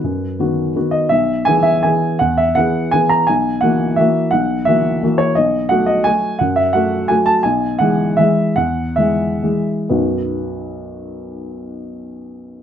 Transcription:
0.00 0.38 F#2 soft
0.00 0.93 B4 medium
0.39 0.72 D#3 soft
0.39 0.72 B3 soft
0.39 0.73 F#4 soft
0.76 1.08 D#3 soft
0.76 1.08 B3 soft
0.76 1.08 F#4 soft
0.91 1.10 D#5 medium
1.09 1.46 B1 soft
1.09 1.46 E5 medium
1.45 1.81 E3 soft
1.45 1.81 B3 soft
1.45 1.81 G#4 soft
1.45 1.65 G#5 medium
1.63 1.83 E5 medium
1.83 2.17 E3 soft
1.83 2.17 B3 soft
1.83 2.18 G#4 soft
1.83 2.20 G#5 medium
2.19 2.55 E2 soft
2.19 2.38 F#5 medium
2.37 2.56 E5 medium
2.55 2.89 E3 soft
2.55 2.89 B3 soft
2.55 2.90 G#4 soft
2.55 2.92 F#5 medium
2.91 3.25 E3 soft
2.91 3.25 B3 soft
2.91 3.25 G#4 soft
2.91 3.10 G#5 medium
3.09 3.27 A#5 medium
3.27 3.62 B1 soft
3.27 3.62 G#5 medium
3.61 3.95 E3 soft
3.61 3.95 A#3 soft
3.61 3.95 F#4 soft
3.61 3.97 F#5 medium
3.96 4.29 E3 soft
3.96 4.30 A#3 soft
3.96 4.30 F#4 soft
3.96 4.32 E5 medium
4.31 4.66 B1 soft
4.31 4.66 F#5 medium
4.65 4.99 E3 soft
4.65 4.99 A#3 soft
4.65 5.00 F#4 soft
4.65 5.19 E5 medium
5.03 5.34 E3 soft
5.03 5.34 A#3 soft
5.03 5.34 F#4 soft
5.18 5.36 C#5 medium
5.35 5.70 B1 soft
5.35 5.70 D#5 medium
5.69 6.03 F#3 soft
5.69 6.03 A3 soft
5.69 6.03 F#4 soft
5.69 5.87 F#5 medium
5.86 6.05 D#5 medium
6.04 6.37 F#3 soft
6.04 6.37 A3 soft
6.04 6.38 F#4 soft
6.04 6.40 G#5 medium
6.39 6.74 F#2 soft
6.39 6.57 F#5 medium
6.56 6.74 E5 medium
6.73 7.06 F#3 soft
6.73 7.07 A3 soft
6.73 7.07 F#4 soft
6.73 7.09 F#5 medium
7.08 7.41 F#3 soft
7.08 7.42 A3 soft
7.08 7.42 F#4 soft
7.08 7.27 G#5 medium
7.26 7.44 A5 medium
7.43 7.79 B1 soft
7.43 7.79 G#5 medium
7.79 8.15 E3 soft
7.79 8.15 G#3 soft
7.79 8.15 G#4 soft
7.79 8.17 F#5 medium
8.17 8.53 E3 soft
8.17 8.53 G#3 soft
8.17 8.54 G#4 soft
8.17 8.56 E5 medium
8.56 8.96 E2 soft
8.56 8.96 F#5 medium
8.96 9.39 E3 soft
8.96 9.39 G#3 soft
8.96 9.40 G#4 soft
8.96 9.67 E5 medium
9.43 9.87 E3 soft
9.43 9.88 G#3 soft
9.43 9.88 G#4 soft
9.89 12.63 B1 soft
9.89 12.63 F#2 soft
9.89 12.63 F#3 soft
9.89 12.63 B3 soft
9.89 12.63 D#4 soft
9.89 12.63 F#4 soft
9.89 12.63 B4 soft

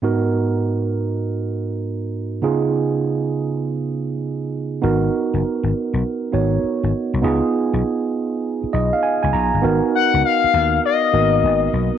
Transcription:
0.02 2.38 G#2 medium
0.02 2.39 B3 medium
0.02 2.39 D#4 medium
0.02 2.39 F#4 medium
0.02 2.40 A#4 medium
2.42 4.79 C#3 medium
2.42 4.79 B3 medium
2.42 4.79 D#4 medium
2.42 4.79 F4 medium
2.42 4.80 G#4 medium
4.82 5.07 G#1 medium
4.82 6.29 B3 medium
4.82 6.30 D#4 medium
4.82 6.30 F#4 medium
4.82 6.31 A#4 medium
5.34 5.41 F#1 medium
5.63 5.71 G#1 medium
5.93 6.01 B1 medium
6.32 6.57 G#1 medium
6.32 7.21 B3 medium
6.32 7.21 D#4 medium
6.32 7.23 F#4 medium
6.32 7.23 C#5 medium
6.64 muted slap bass stroke soft
6.83 6.91 G#1 medium
7.14 7.21 C2 medium
7.22 7.39 C#2 loud
7.22 9.58 B3 medium
7.22 9.59 D#4 medium
7.22 9.59 F4 medium
7.22 9.60 G#4 medium
7.73 7.81 B1 medium
8.64 muted slap bass stroke soft
8.73 8.89 B1 medium
8.73 8.92 D#5 medium
8.93 9.02 F5 medium
9.03 9.21 G#5 medium
9.23 9.31 C#2 medium
9.23 9.32 G#5 medium
9.33 9.50 B1 medium
9.33 9.61 A#5 medium
9.54 9.62 G1 medium
9.62 9.79 G#1 loud
9.62 11.09 B3 medium
9.62 11.10 D#4 medium
9.62 11.10 F#4 medium
9.62 11.11 A#4 medium
9.95 10.22 F#5 loud
10.14 10.22 C#2 medium
10.25 10.80 F5 loud
10.44 muted slap bass stroke soft
10.54 10.78 D#2 medium
10.85 11.70 D#5 medium
11.12 11.37 G#1 medium
11.12 11.21 A#3 soft
11.12 11.98 D#4 soft
11.12 11.98 F#4 soft
11.12 11.98 A#4 medium
11.19 11.98 B3 medium
11.43 11.67 G#1 medium
11.73 11.89 B1 medium

